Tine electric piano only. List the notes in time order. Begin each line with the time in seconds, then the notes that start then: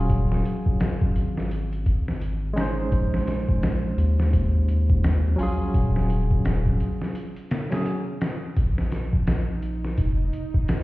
Already playing: F#3 C#4 F4 G#4
2.53 G#3 C#4
2.58 D#4 C5
5.36 F#3 C#4
5.40 F4 G#4
7.70 F#3 C#4 G#4